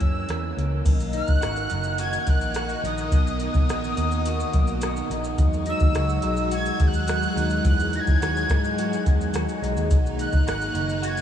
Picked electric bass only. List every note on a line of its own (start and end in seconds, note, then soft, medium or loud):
0.01 0.23 F#2 medium
0.29 0.51 E2 medium
0.57 0.80 C#2 medium
0.85 1.19 B1 loud
1.29 1.40 A#1 medium
1.43 1.65 G#1 medium
1.71 2.16 F#1 medium
2.27 2.73 A#1 medium
2.84 3.06 A#1 medium
3.12 3.46 B1 loud
3.55 3.66 B1 medium
3.69 3.91 A#1 medium
3.97 4.42 D#2 medium
4.54 4.99 B1 loud
5.10 5.33 A#1 medium
5.38 5.72 E2 loud
5.81 5.92 D#2 medium
5.95 6.17 C#2 medium
6.23 6.68 B1 loud
6.80 7.25 D#2 loud
7.36 7.59 D#2 medium
7.64 7.98 E2 loud
8.07 8.18 E2 medium
8.21 8.44 D#2 medium
8.50 8.95 G#2 medium
9.07 9.29 E2 medium
9.33 9.45 D#2 medium
9.62 9.73 B1 medium
9.77 9.88 D#2 medium
9.90 10.24 B1 loud
10.33 10.44 A#1 medium
10.46 10.69 G#1 medium
10.74 11.20 F#1 medium